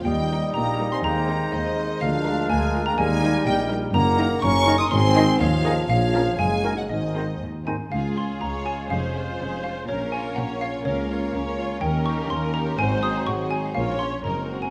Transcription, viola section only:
0.31 G3 D#4
0.80 G3 D#4
1.29 G#3 C4
1.77 G#3 C4
2.26 G#3 F4
2.75 G#3 F4
3.23 G3 D#4
3.71 G3 D#4
4.19 D#3 D#4
4.67 D#3 D#4
5.16 D#3 D#4
5.65 D#3 D#4
6.15 F3 C#4
6.64 D#3 D#4
7.16 D#3 C4
7.67 D#3 C4
8.42 C#5
8.91 C5
9.88 A#4
10.36 C#5
10.85 A#4
11.33 C#5
11.81 A#4
12.79 C5
13.27 G#4
13.76 C#5
14.25 A#4

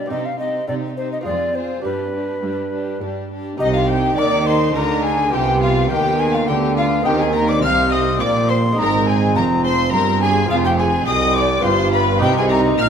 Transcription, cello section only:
0.10 C3
0.68 C3
1.26 F2
1.85 G2
2.43 G2
3.01 G2
3.59 C3
4.18 D#3
4.75 D3
5.34 C3
5.91 D#3
6.49 D3
7.06 D#3
7.64 C3
8.21 A#2
8.78 G#2
9.35 F2
9.92 G2
10.50 F2
11.07 C2
11.65 G2
12.22 C3
12.80 A#2

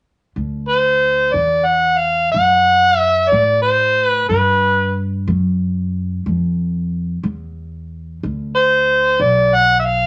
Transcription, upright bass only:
0.36 D2
1.34 E2
2.34 F#2
3.32 A2
4.30 G2
5.28 F#2
6.26 F2
7.24 E2
8.23 D2
9.20 B1

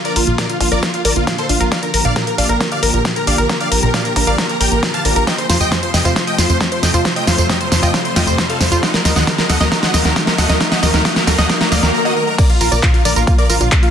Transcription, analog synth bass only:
0.16 A#1
0.27 A#1
0.61 A#1
0.72 A#1
1.05 A#1
1.16 A#1
1.50 A#1
1.61 A#1
1.94 A#1
2.05 A#1
2.38 A#1
2.49 A#1
2.83 A#1
2.94 A#1
3.27 A#1
3.38 A#1
3.72 A#1
3.83 A#1
4.16 A#1
4.27 A#1
4.61 A#1
4.72 A#1
5.05 A#1
5.16 A#1
5.49 F2
5.61 F2
5.94 F2
6.05 F2
6.38 F2
6.50 F2
6.83 F2
6.94 F2
7.27 F2
7.38 F2
7.72 F2
7.83 F2
8.16 F2
8.27 F2
8.61 F2
8.72 F2
9.05 D#2
9.16 D#2
9.50 D#2
9.61 D#2
9.94 D#2
10.05 D#2
10.38 D#2
10.50 D#2
10.83 D#2
10.94 D#2
11.27 D#2
11.38 D#2
11.72 D#2
11.83 D#2
12.61 A#1
12.72 A#1
13.05 A#1
13.16 A#1
13.50 A#1
13.61 A#1

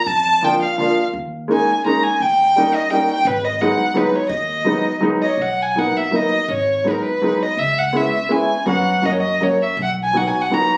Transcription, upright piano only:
0.42 F3 A#3 D4 F4
0.78 F3 A#3 D4 F4
1.48 G#3 A#3 C#4 D#4
1.85 G#3 A#3 C#4 D#4
2.56 G3 A#3 C#4 D#4
2.91 G3 A#3 C#4 D#4
3.61 F#3 G#3 B3 D#4
3.94 F#3 G#3 B3 D#4
4.64 F#3 G#3 B3 D#4
5.00 F#3 G#3 B3 D#4
5.76 F#3 A#3 B3 D#4
6.11 F#3 A#3 B3 D#4
6.84 F#3 G#3 B3 D#4
7.22 F#3 G#3 B3 D#4
7.93 G#3 B3 C#4 E4
8.29 G#3 B3 C#4 E4
8.66 F#3 B3 C#4 F#4
9.02 F#3 A#3 C#4 F#4
9.40 F#3 A#3 C#4 F#4
10.13 F#3 B3 D#4 F#4
10.50 F#3 B3 D#4 F#4

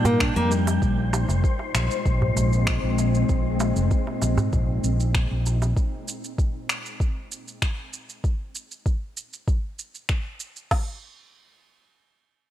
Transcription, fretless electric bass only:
Already playing: A#2
0.36 F2
0.82 A#1
1.28 F1
1.75 A#1
2.06 A#1
2.36 A#1
2.83 A#1
3.29 A#1
3.76 F1
4.22 A#1
4.53 A#1
4.84 A#1
5.31 A#1

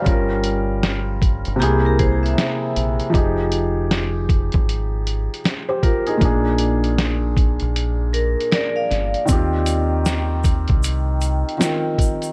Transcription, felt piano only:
Already playing: C5 F5
0.02 G3 C#4
0.06 F4 A#4
1.56 C3 A#3
1.61 E4 G#4
3.10 F3 D#4
3.15 G4 G#4
5.69 G4 C5
5.83 F4 A#4
6.07 D#4 G#4
6.17 A#2 A#3
6.22 D4 G#4
9.25 D#3 C4
9.30 F4 G4
11.58 D#3 C4 F4 A#4

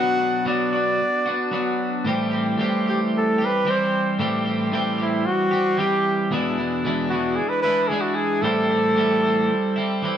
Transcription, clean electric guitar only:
Already playing: B2 F#3 B3 D4 F#4
0.18 B3 D4 F#4
0.45 B2 F#3 B3 D4 F#4
0.73 B3 D4 F#4
1.26 B3 D4 F#4
1.51 F#3 B3 D4 F#4
2.05 A2 E3 G3 C4
2.09 G4
2.31 G3 C4 G4
2.58 A2 E3 G3 C4 G4
2.86 G3 C4 G4
3.38 G3 C4 G4
3.65 E3 G3 C4 G4
4.19 A2 E3 G3 C4 G4
4.45 G3 C4 G4
4.72 A2 E3 G3 C4 G4
4.98 G3 C4 G4
5.51 G3 C4 G4
5.77 E3 G3 C4 G4
6.31 E2 B2 E3 G#3 D4 E4
6.58 E3 G#3 D4 E4
6.84 E2 B2 E3 G#3 D4 E4
7.11 E3 G#3 D4 E4
7.64 E3 G#3 D4 E4
7.90 E3 G#3 D4 E4
8.42 A2 E3 G3 C4 E4
8.70 G3 C4 E4
8.96 A2 E3 G3 C4 E4
9.24 G3 C4 E4
9.76 G3 C4 E4
10.02 E3 G3 C4 E4

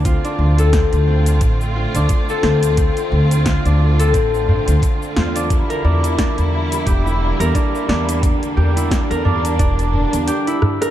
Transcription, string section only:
0.06 D3 A3 C4 F4
5.51 G3 A#3 E4
8.23 D4

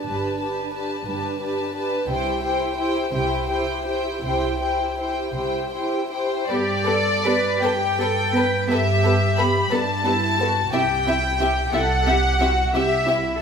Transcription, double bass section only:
0.06 G1
1.07 G1
2.09 C2
3.13 C2
4.23 C2
5.35 C2
6.48 G2
7.62 G2
8.70 G2
9.72 G2
10.72 C2
11.72 C2
12.72 C2

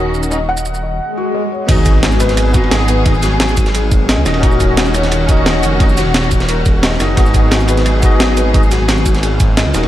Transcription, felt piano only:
Already playing: F#4 A#4
0.32 D#5
0.49 F#5
0.83 D#5
1.17 F#4
1.35 D#5
1.52 C#5
1.69 F#4
2.03 F#4
2.20 B4
2.55 F#4
2.89 B4
3.23 F#4
3.40 F#4
3.75 G#4
4.09 D#5
4.43 F#4
4.77 F#4
4.95 C#5
5.29 F#4
5.63 C#5
5.97 F#4
6.14 F#4
6.49 A#4
6.83 D#5
7.17 F#4
7.52 F#4
7.69 B4
8.03 F#4
8.37 B4
8.72 F#4
8.89 F#4
9.23 G#4
9.57 D#5

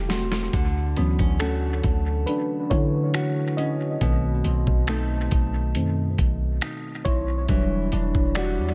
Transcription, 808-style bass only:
Already playing: E1
0.54 D2
0.97 D2
1.20 D2
1.84 D2
2.71 D3
4.02 B1
4.45 B1
4.67 B1
5.32 B1
5.76 F#2
6.19 B1
7.06 B1
7.49 E1
7.93 E1
8.15 E1
8.58 E2

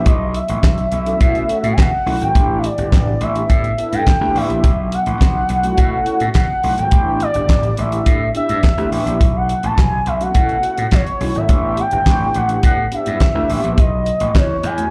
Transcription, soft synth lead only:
0.08 D#5
0.36 E5
1.73 G#5
1.80 F#5
2.23 G5
2.58 E5
2.66 D5
3.23 E5
3.37 E5
3.94 G5
4.37 E5
4.94 F#5
6.37 F#5
6.80 G5
7.22 D5
7.79 E5
8.37 E5
8.94 E5
9.37 F#5
9.65 A5
9.79 G#5
10.07 E5
10.22 F#5
10.94 C#5
11.37 E5
11.80 G5
12.37 F#5
12.66 F#5
12.94 E5
13.80 D#5
14.37 C#5
14.65 G#5

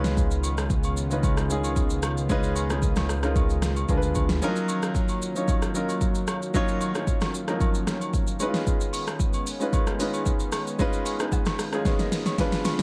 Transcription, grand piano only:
Already playing: G#3 C#4 D#4 F4 B4
1.10 G#3 C#4 D#4 F4 B4
1.50 G#3 C#4 D#4 F4 G#4
2.29 G#3 C#4 D#4 F4 B4
2.70 G#3 C#4 D#4 F4 G#4
3.23 G#3 C#4 D#4 F4 A#4
3.89 G#3 B3 D4 F4 A#4
3.97 B4
4.42 F3 C#4 D#4 F4 A#4
4.48 F#3
5.35 F#3 C#4 D#4 F4 C#5
5.74 F#3 C#4 D#4 F4 A#4
6.54 F#3 C#4 D#4 F4 C#5
6.94 F#3 C#4 D#4 F4 C#5
7.47 F3 C#4 D#4 F4 A#4
7.54 F#3
8.40 G#3 C#4 D#4 E4 B4
8.48 F4
9.60 G#3 C#4 D#4 F4 B4
9.99 G#3 C#4 D#4 F4 B4
10.79 G#3 C#4 D#4 F4 B4
11.19 G#3 C#4 D#4 F4 B4
11.72 G#3 C#4 D#4 F4 G#4
11.86 F4 B4
12.00 A#4 D#5
12.26 G#4 C#5
12.38 G#3 B3 D4 F4 B4

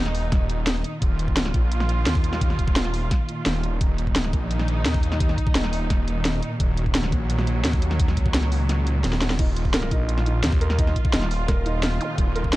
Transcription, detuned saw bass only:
Already playing: D#1
1.02 D#1
1.54 A#1
2.06 D#2
2.59 D#1
3.46 D#1
3.81 D#1
4.33 A#1
4.86 D#2
5.55 D#1
6.60 D#1
7.12 A#1
7.65 D#2
8.17 C#2
9.04 D#1
9.39 D#1
12.18 D#1

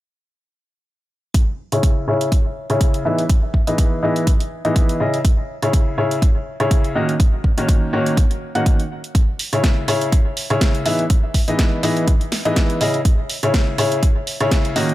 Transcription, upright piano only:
1.72 C#3 E4 G#4 C#5
2.08 C#3 E4 G#4 C#5
2.70 C#3 E4 G#4 C#5
3.05 E3 B3 D#4 E4 G#4 E5
3.67 E3 B3 D#4 E4 G#4 D#5
4.03 E3 B3 D#4 E4 G#4 D#5
4.65 E3 B3 D#4 E4 G#4 D#5
5.00 C#3 E4 G#4 D#5
5.62 C#3 E4 G#4 C#5
5.98 C#3 E4 G#4 C#5
6.60 C#3 E4 G#4 C#5
6.95 D#3 A#3 C#4 D#4 F#4 D#5
7.58 D#3 A#3 C#4 D#4 F#4 C#5
7.93 D#3 A#3 C#4 D#4 F#4 C#5
8.55 D#3 A#3 C#4 D#4 F#4 F#5
9.53 C#3 E4 G#4 C#5
9.88 C#3 E4 G#4 C#5
10.50 C#3 E4 G#4 C#5
10.86 E3 B3 D#4 E4 G#4 E5
11.48 E3 B3 D#4 E4 G#4 D#5
11.83 E3 B3 D#4 E4 G#4 D#5
12.45 E3 B3 D#4 E4 G#4 D#5
12.81 C#3 E4 G#4 D#5
13.43 C#3 E4 G#4 C#5
13.78 C#3 E4 G#4 C#5
14.40 C#3 E4 G#4 C#5
14.76 D#3 A#3 C#4 D#4 F#4 D#5

